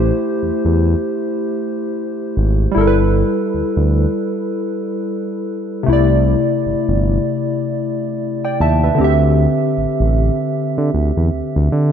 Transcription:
Already playing: A1 A3 E4 G4 C5
0.42 E2
0.65 E2
2.37 G#1
2.72 G3 E4
2.76 G1 A4
2.81 A#4
2.87 B4
3.54 D2
3.77 D2
5.83 C3 A3
5.88 C2 E4
5.93 D5
6.66 G1
6.88 G1
8.45 D5 G5
8.60 D#2 E5 A5
8.83 B4 E5
8.95 D3 C4
8.99 D2 G4
9.04 E5
9.77 A1
10.00 A1
10.78 D3
10.94 D2
11.17 E2
11.33 D2
11.56 D2
11.72 D3

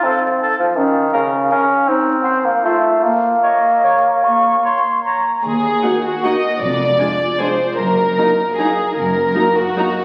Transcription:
0.04 C4 A4 F5
0.41 A4 F5
0.59 F3
0.76 D#3 C#4
1.13 C#3 A#4 F5
1.50 C#4 A#4 F5
1.87 C4 D#4
2.23 C5 F#5
2.45 A#3
2.61 A3 F4 C5 F5
3.03 A#3
3.42 C#5 D#5
3.84 C#5
4.24 A#3 C#6
4.65 C#5 C6
5.05 C#5 A#5
5.44 D#2 G#4
5.82 A#3 D#4 F#4 F#5
6.05 F#4
6.23 A#3 D#4 F#4 D#5 F#5
6.61 F1 F2 D5
6.99 G#3 D4 F4 G#5
7.39 G#3 D4 F4 C5 G#5
7.78 F#1 F#2 A#4
8.18 F#3 A#3 D#4 A#5
8.57 F#3 A#3 D#4 G#4 A#5
8.96 F#1 F#2 A#4
9.35 F#3 A#3 D#4 A#5
9.56 F#4
9.76 F#3 A#3 D#4 A#5

